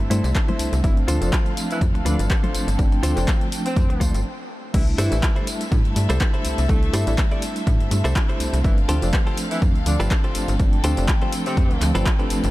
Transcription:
Already playing: C4 A4 E5
0.00 muted clean electric guitar stroke
0.10 G2 G3 A3 D4 E4 A4 C5, open hi-hat, tambourine, high conga, shaker
0.24 C2, closed hi-hat, tambourine
0.35 kick, clap, closed hi-hat, tambourine
0.48 E4 A4 C5, closed hi-hat, high conga, low conga
0.59 C2, open hi-hat, tambourine
0.73 C2, closed hi-hat, tambourine, shaker
0.83 G1 E3 F3 A3 C4 D4 E4 A4 F5, kick, closed hi-hat, tambourine
0.97 muted clean electric guitar stroke, closed hi-hat
1.08 D2 F3 A3 C4 D4 F4 A4 C5, open hi-hat, tambourine
1.21 F1 F3 A3 C4 D4, closed hi-hat, tambourine
1.33 kick, clap, closed hi-hat, tambourine
1.46 closed hi-hat
1.57 open hi-hat, tambourine
1.70 E3 E4, closed hi-hat, tambourine
1.81 F2 F3 A3 C4 D4, kick, closed hi-hat, tambourine
1.94 D2, muted clean electric guitar stroke, closed hi-hat
2.05 D2 D3 F3 A3 C4 D4 F4 A4 B4, open hi-hat, tambourine, high conga, shaker
2.19 G1, closed hi-hat, tambourine
2.30 kick, clap, closed hi-hat, tambourine
2.43 F4 A4 C5, closed hi-hat, high conga, low conga
2.54 G1, open hi-hat, tambourine, shaker
2.67 G1, closed hi-hat, tambourine
2.78 G1 F3 A3 C4 D4 G5, kick, closed hi-hat, tambourine
2.92 muted clean electric guitar stroke, closed hi-hat, shaker
3.03 D2 F3 A3 C4 D4 F4 A4 C5, open hi-hat, tambourine
3.16 F1 F3 A3 C4 D4, clap, closed hi-hat, tambourine
3.28 kick, clap, closed hi-hat, tambourine
3.41 closed hi-hat
3.52 open hi-hat, tambourine, shaker
3.66 C4, closed hi-hat, tambourine
3.76 F2 F3 A3 C4 D4, kick, closed hi-hat, tambourine
3.89 D2, muted clean electric guitar stroke, closed hi-hat, shaker
4.00 D2 F3 A3 C4 D4 F4 A4 C5, kick, open hi-hat, tambourine, high conga, shaker
4.14 G1, closed hi-hat, tambourine
4.74 C2 E3 G3 A3 C4 D4 E4 A4 E5, kick, closed hi-hat, crash, tambourine
4.88 closed hi-hat
4.98 G2 E3 G3 A3 D4 E4 G4 A4 C5, open hi-hat, tambourine
5.11 A1 G3 A3 D4 E4, closed hi-hat, tambourine
5.23 kick, clap, closed hi-hat, tambourine
5.36 E4 G4 A4 C5, closed hi-hat
5.47 open hi-hat, tambourine
5.61 muted clean electric guitar stroke, closed hi-hat, tambourine
5.71 A2 G3 A3 D4 E4, muted clean electric guitar stroke, kick, closed hi-hat, tambourine
5.85 G2, closed hi-hat
5.95 G2 G3 A3 D4 E4, open hi-hat, tambourine
6.09 C2 E4 G4 A4 C5, closed hi-hat, tambourine
6.20 kick, clap, closed hi-hat, tambourine
6.33 E4 G4 A4 C5, closed hi-hat
6.45 C2, open hi-hat, tambourine
6.58 C2, closed hi-hat, tambourine
6.68 C2 G3 A3 D4 E4 A4, kick, closed hi-hat, tambourine
6.83 closed hi-hat
6.93 G2 G3 A3 D4 E4 G4 A4 C5, open hi-hat, tambourine
7.06 A1 G3 A3 D4 E4, closed hi-hat, tambourine
7.18 kick, clap, closed hi-hat, tambourine
7.31 E4 G4 A4 D5, closed hi-hat
7.42 open hi-hat, tambourine
7.56 muted clean electric guitar stroke, closed hi-hat, tambourine
7.66 A2 G3 A3 D4 E4, muted clean electric guitar stroke, kick, closed hi-hat, tambourine
7.80 G2, closed hi-hat
7.91 G2 G3 A3 D4 E4, open hi-hat, tambourine
8.04 C2 E4 G4 A4 C5, closed hi-hat, tambourine
8.16 kick, clap, closed hi-hat, tambourine
8.28 E4 G4 A4 C5, closed hi-hat
8.40 C2, open hi-hat, tambourine
8.53 C2, closed hi-hat, tambourine
8.64 G1 E3 F3 A3 C4 D4 E4 A4 F5, kick, closed hi-hat, tambourine
8.78 closed hi-hat
8.89 D2 F3 A3 C4 D4 F4 G4 A4 C5, open hi-hat, tambourine
9.02 F1 F3 A3 C4 D4, closed hi-hat, tambourine
9.13 kick, clap, closed hi-hat, tambourine
9.27 F4 G4 A4 C5, closed hi-hat
9.37 open hi-hat, tambourine
9.51 E3 E4, muted clean electric guitar stroke, closed hi-hat, tambourine
9.62 F2 F3 A3 C4 D4, kick, closed hi-hat, tambourine
9.75 D2, closed hi-hat
9.86 D2 D3 F3 A3 C4 D4, open hi-hat, tambourine
10.00 G1 F4 G4 A4 B4, closed hi-hat, tambourine
10.11 kick, clap, closed hi-hat
10.24 F4 G4 A4 C5, closed hi-hat
10.35 G1, open hi-hat, tambourine
10.48 G1, closed hi-hat, tambourine
10.59 G1 F3 A3 C4 D4 G5, kick, closed hi-hat, tambourine
10.73 closed hi-hat
10.84 D2 F3 A3 C4 D4 F4 G4 A4 C5, open hi-hat, tambourine
10.97 F1 F3 A3 C4 D4, closed hi-hat, tambourine
11.08 kick, clap, closed hi-hat
11.22 F4 G4 A4 C5, closed hi-hat
11.33 open hi-hat, tambourine
11.46 C3 C4, muted clean electric guitar stroke, closed hi-hat, tambourine
11.57 F2 F3 A3 C4 D4, kick, closed hi-hat, tambourine
11.71 D2, closed hi-hat
11.81 D2 F3 A3 C4 F4, clap, open hi-hat, tambourine
11.94 G1 F3 A3 C4 D4 F4 G4 A4 B4, closed hi-hat, tambourine
12.06 kick, clap, closed hi-hat, tambourine
12.19 F3 A3 C4 D4 F4 G4 A4 B4, closed hi-hat
12.30 G1, open hi-hat, tambourine
12.44 G1, closed hi-hat, tambourine

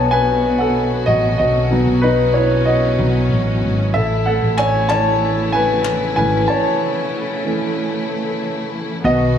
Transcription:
Already playing: B1 B2 F#3 B3 D#4 F#4 A4 B4 C#5 D#5 F#5 G#5 A5
0.11 B4 G#5
0.58 A4 F#5
1.06 A1 F#4 D#5
1.38 B1 C#4 F#4 D#5
1.71 F#3 B3 D#4
1.87 B1
2.02 D#4 B4
2.34 E4 C#5
2.65 F#4 D#5
2.98 B1 F#3 B3 D#4
3.31 A1
3.63 G#1
3.94 A1 C#3 E3 A3 E4 A4 E5
4.26 A4 F#5
4.42 A1
4.57 C#5 G#5, clap
4.89 E3 A3 C#4 C#5 A5, clap
5.52 B4 G#5
5.85 clap
6.16 G#1 E3 A3 C#4 B4 G#5
6.48 A3 C#5 A5
7.44 E3 A3 C#4
9.04 B1 B2 D#3 F#3 B3 F#4 D#5

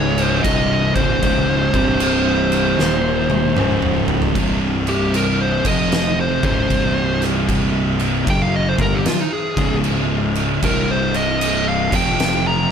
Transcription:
Already playing: C#1 C#2 G#2 C#3 C#5
0.18 crash
0.23 C5
0.43 C1 C2 G2 C3 D#5, kick, crash
0.95 C#1 C#2 G#2 C#3 C5, kick, crash
1.23 C#1 C#2 G#2 C#3, kick, crash
1.74 C1 C2 G2 C3, kick, crash
2.00 crash
2.52 crash
2.79 D#1 D#2 A#2 D#3, snare
3.30 high tom
3.57 C#1 C#2 G#2 C#3, mid tom
3.82 mid tom
4.08 floor tom
4.22 floor tom
4.35 C1 C2 G2 C3, kick, crash
4.87 G4, crash
5.14 A#4, crash
5.41 C5
5.65 F1 F2 C3 F3 D#5, kick, crash
5.92 snare, crash
6.20 C5
6.43 C#1 C#2 G#2 C#3 C5, kick, crash
6.70 C1 C2 G2 C3, kick, crash
7.22 snare, crash
7.49 kick, crash
7.99 crash
8.27 F#1 F#2 C#3 F#3 G5, kick, crash
8.42 F5
8.56 D#5
8.69 C5
8.78 G1 G2 D3 G3 A#4, kick, crash
8.95 G4
9.06 F4, snare, crash
9.21 D#4
9.33 G#4
9.57 C#1 C#2 G#2 C#3, kick, crash
9.84 crash
10.35 crash
10.63 C1 C2 G2 C3 A#4, kick, crash
10.91 C5
11.14 D#5, crash
11.41 crash
11.69 F5
11.92 F1 F2 C3 F3 G5, kick, crash
12.20 snare, crash
12.47 A#5

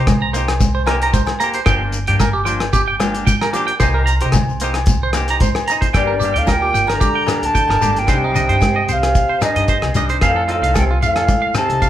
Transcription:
Already playing: C3 G4
0.00 D#4
0.07 kick, cross-stick, closed hi-hat, muted conga, high conga, low conga, low agogo, shekere
0.21 C2 A#5
0.33 A#3 D#4 C5, closed hi-hat, shekere
0.38 G4
0.48 cross-stick, closed hi-hat, low agogo
0.61 kick, closed hi-hat, muted conga, high conga, shekere
0.75 C5
0.86 A#3 D#4 A#4, cross-stick, closed hi-hat, low agogo
0.91 G4
1.01 G4 A#5, closed hi-hat, shekere
1.06 D#4
1.14 C5, kick, closed hi-hat, high conga, shekere
1.27 cross-stick, low agogo
1.40 A#3 G4 A#5, closed hi-hat, shekere
1.54 C5, closed hi-hat
1.66 G1 F3 A#3 D4 G4 G5, kick, cross-stick, closed hi-hat, muted conga, low agogo, shekere
1.83 A#3 D4
1.92 closed hi-hat, shekere
2.07 G2 A#3 D4 G4 G5, closed hi-hat
2.20 A#4, kick, cross-stick, closed hi-hat, muted conga, high conga, low agogo, shekere
2.33 G1 G4
2.45 F3 A#3 D4 G5, closed hi-hat, shekere
2.60 cross-stick, closed hi-hat, low agogo
2.73 G4, kick, closed hi-hat, muted conga, shekere
2.88 G5
3.00 F3 A#3 D4 G4, cross-stick, closed hi-hat, muted conga, high conga, low agogo, shekere
3.14 A#3 D4 G4, closed hi-hat, shekere
3.27 G5, kick, closed hi-hat, high conga, shekere
3.41 A#4, cross-stick, low agogo
3.53 F3 A#3 D4 G4, closed hi-hat, shekere
3.67 G5, closed hi-hat
3.80 C2 A#3 D#4 G4 C5, kick, cross-stick, closed hi-hat, muted conga, low agogo, shekere
3.94 G4 A#4
3.99 D#4
4.06 A#5, closed hi-hat, shekere
4.21 C3 G4 C5, closed hi-hat, shekere
4.25 D#4
4.32 kick, cross-stick, closed hi-hat, muted conga, high conga, low conga, low agogo, shekere
4.49 C2, shekere
4.60 A#3 D#4 C5, closed hi-hat, shekere
4.64 G4
4.74 cross-stick, closed hi-hat, low agogo, shekere
4.86 kick, closed hi-hat, muted conga, high conga, shekere
5.03 C5
5.13 A#3 D#4, cross-stick, closed hi-hat, muted conga, low agogo, shekere
5.17 G4
5.28 G4 A#5, closed hi-hat, shekere
5.32 D#4
5.40 C5, kick, closed hi-hat, high conga, shekere
5.55 cross-stick, low agogo, shekere
5.68 A#5, muted clean electric guitar stroke, closed hi-hat, shekere
5.72 D#4
5.81 C5, kick, closed hi-hat, shekere
5.93 G1 G2 G3 D4 D5 G5, kick, cross-stick, closed hi-hat, muted conga, low agogo, shekere
5.97 A#3 G4
6.07 A#4
6.20 G3 A#3 G4, closed hi-hat, shekere
6.25 D4 G4
6.34 D2 A2 G4 F5 G5, closed hi-hat
6.38 A#3 D4
6.47 A#4 G5, kick, cross-stick, closed hi-hat, high conga, low agogo, shekere
6.52 A#2
6.62 G4
6.74 G1 G5, closed hi-hat, muted conga, shekere
6.87 A#4 A#5, cross-stick, closed hi-hat, low agogo, shekere
6.92 D3
7.00 G4, kick, closed hi-hat, muted conga, high conga, shekere
7.15 G5
7.27 G3 A#3 D4 G4, cross-stick, closed hi-hat, muted conga, low agogo, shekere
7.42 D2 A#3 D4 G4 A5, closed hi-hat
7.46 D3
7.55 G5, kick, closed hi-hat, shekere
7.68 G1 A#4, cross-stick, low agogo
7.81 G1 G3 A#3 D4 G4, closed hi-hat, high conga, shekere
7.94 D4 G4, closed hi-hat
7.98 A#2 A#3 G5
8.07 C2 G3 D4 D#4 C5, kick, cross-stick, closed hi-hat, muted conga, low agogo, shekere
8.12 C3 G5
8.24 D#4
8.32 G3 D4 D#5, shekere
8.36 D#4, closed hi-hat, low conga
8.47 G2 D4 D#4 C5, closed hi-hat
8.61 kick, cross-stick, closed hi-hat, high conga, low agogo, shekere
8.76 D#5
8.88 C2 C3 C5 F5, closed hi-hat, muted conga, shekere
9.03 cross-stick, closed hi-hat, low agogo, shekere
9.15 kick, closed hi-hat, muted conga, shekere
9.29 C5
9.41 G3 D4 D#4 D#5, cross-stick, closed hi-hat, muted conga, low agogo, shekere
9.47 G2
9.54 G2 D#4 D#5, closed hi-hat
9.58 D4
9.68 C5, kick, closed hi-hat, shekere
9.82 C2, cross-stick, low agogo
9.94 C2 G3 D4 D#4 D#5, closed hi-hat, high conga, shekere
10.08 D4 D#4 C5, closed hi-hat
10.21 F2 C4 D#4 A4 F5, kick, cross-stick, closed hi-hat, muted conga, low agogo, shekere
10.27 A2 F5
10.36 A4
10.48 C4 D#4 F4 A4, closed hi-hat
10.53 A2 F5
10.62 C2 A4 F5, closed hi-hat
10.66 D#4
10.74 A4 G5, kick, cross-stick, closed hi-hat, high conga, low agogo, shekere
10.80 C3
10.91 F4
11.01 F2 A2 F5, closed hi-hat, muted conga, shekere
11.05 F5
11.16 A4, cross-stick, closed hi-hat, low agogo, shekere
11.28 muted clean electric guitar stroke, kick, closed hi-hat, muted conga, high conga, shekere
11.42 F5
11.54 C3 C4 D#4 A4 A5, cross-stick, closed hi-hat, muted conga, low agogo, shekere
11.69 C2 D#4 A4, closed hi-hat
11.82 F5, kick, closed hi-hat, shekere

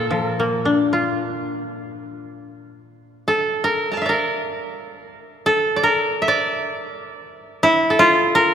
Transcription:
Already playing: A#2 F4 A4
0.10 F3
0.20 A#4
0.40 A#3
0.65 D4
0.93 F4
3.28 A4
3.64 A#4
3.92 A5 A#5
3.97 F5
4.02 E5
4.06 A#4 D5
5.46 A4
5.76 D5
5.83 A#4
6.22 E5
6.28 D5
7.63 E4
7.90 A4
7.99 F4
8.35 A#4

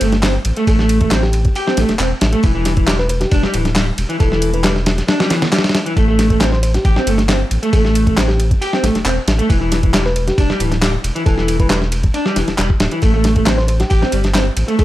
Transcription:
0.01 G1 A3, closed hi-hat, ride
0.12 snare, closed hi-hat
0.23 C4, snare, clap, closed hi-hat, open hi-hat
0.45 A1, closed hi-hat, ride
0.56 A3, closed hi-hat
0.67 A1 A3 A4, kick, closed hi-hat, ride
0.79 A3, snare
0.89 closed hi-hat, ride
1.01 A3, kick, closed hi-hat
1.11 C4, snare, clap, closed hi-hat, ride
1.23 G4, snare
1.33 closed hi-hat, ride
1.45 kick, closed hi-hat
1.55 G4, closed hi-hat, ride
1.67 C4, snare
1.77 A1 A3, snare, closed hi-hat, ride
1.89 E1, snare, closed hi-hat
1.99 E1 C4, clap, closed hi-hat, ride
2.21 A1, snare, closed hi-hat, ride
2.33 A3, closed hi-hat
2.43 E1 E3, kick, closed hi-hat, ride
2.55 E3
2.65 snare, closed hi-hat, ride
2.77 E3, kick, closed hi-hat
2.87 G3, snare, clap, closed hi-hat, ride
2.99 B4, snare
3.09 B4, closed hi-hat, ride
3.21 G4, snare, closed hi-hat
3.31 E1 D4, kick, closed hi-hat, ride
3.43 G3, snare
3.53 D1 E3, closed hi-hat, ride
3.65 snare, closed hi-hat
3.75 G3, snare, clap, closed hi-hat, open hi-hat
3.98 E1, closed hi-hat, ride
4.09 E3, closed hi-hat
4.20 E1 E3 A4, kick, closed hi-hat, ride
4.32 E3, snare
4.42 closed hi-hat, ride
4.54 E3 B4, closed hi-hat
4.64 G3 B4, snare, clap, closed hi-hat, ride
4.76 snare
4.86 snare, closed hi-hat, ride
4.98 snare, closed hi-hat
5.08 D4, snare, closed hi-hat, ride
5.20 G3, snare, ride
5.30 E3, snare, closed hi-hat, ride
5.42 snare, closed hi-hat, ride
5.52 G3, snare, clap, closed hi-hat, ride
5.58 snare, ride
5.64 snare, ride
5.69 snare, ride
5.75 snare, closed hi-hat, ride
5.86 E3, closed hi-hat
5.96 A1 A3, kick, closed hi-hat, ride
6.08 A3
6.19 snare, closed hi-hat, ride
6.30 A3, kick, closed hi-hat
6.41 C4, snare, clap, closed hi-hat, ride
6.52 C5, snare
6.63 C5, closed hi-hat, ride
6.74 G4, snare, closed hi-hat
6.85 A1 G4, kick, closed hi-hat, ride
6.96 C4, snare
7.07 G1 A3, closed hi-hat, ride
7.18 snare, closed hi-hat
7.29 C4, snare, clap, closed hi-hat, open hi-hat
7.51 A1, closed hi-hat, ride
7.63 A3, closed hi-hat
7.73 A1 A3 A4, kick, closed hi-hat, ride
7.85 A3, snare
7.95 closed hi-hat, ride
8.07 A3, kick, closed hi-hat
8.17 C4, snare, clap, closed hi-hat, ride
8.28 G4, snare
8.40 closed hi-hat, ride
8.51 kick, closed hi-hat
8.61 G4, closed hi-hat, ride
8.73 C4, snare
8.83 A1 A3, snare, closed hi-hat, ride
8.94 E1, snare, closed hi-hat
9.05 E1 C4, clap, closed hi-hat, ride
9.27 A1, snare, closed hi-hat, ride
9.39 A3, closed hi-hat
9.49 E1 E3, kick, closed hi-hat, ride
9.61 E3
9.72 snare, closed hi-hat, ride
9.83 E3, kick, closed hi-hat
9.93 G3, snare, clap, closed hi-hat, ride
10.06 B4, snare
10.16 closed hi-hat, ride
10.28 G4, snare, closed hi-hat
10.38 E1 D4, kick, closed hi-hat, ride
10.50 G3, snare
10.60 D1 E3, closed hi-hat, ride
10.72 snare, closed hi-hat
10.82 G3, snare, clap, closed hi-hat, open hi-hat
11.04 E1, closed hi-hat, ride
11.15 E3, closed hi-hat
11.26 E1 E3 A4, kick, closed hi-hat, ride
11.38 E3, snare
11.48 closed hi-hat, ride
11.60 E3 B4, kick, closed hi-hat
11.70 G3 B4, snare, clap, closed hi-hat, ride
11.82 snare
11.92 closed hi-hat, ride
12.04 kick, closed hi-hat
12.14 D4, closed hi-hat, ride
12.26 G3, snare
12.36 E1 E3, snare, closed hi-hat, ride
12.48 E1, snare, closed hi-hat
12.58 E1 G3, snare, clap, closed hi-hat, ride
12.70 kick
12.80 D1, snare, closed hi-hat, ride
12.91 E3, closed hi-hat
13.02 A1 A3, kick, closed hi-hat, ride
13.14 A3
13.24 snare, closed hi-hat, ride
13.35 A3, kick, closed hi-hat
13.46 C4, snare, clap, closed hi-hat, ride
13.58 C5, snare
13.68 C5, closed hi-hat, ride
13.80 G4, snare, closed hi-hat
13.90 A1 G4, kick, closed hi-hat, ride
14.02 C4, snare
14.12 G1 G3, closed hi-hat, ride
14.24 snare, closed hi-hat
14.34 C4, snare, clap, closed hi-hat, open hi-hat
14.57 A1, closed hi-hat, ride
14.68 A3, closed hi-hat
14.79 A1 A3 A4, kick, closed hi-hat, ride

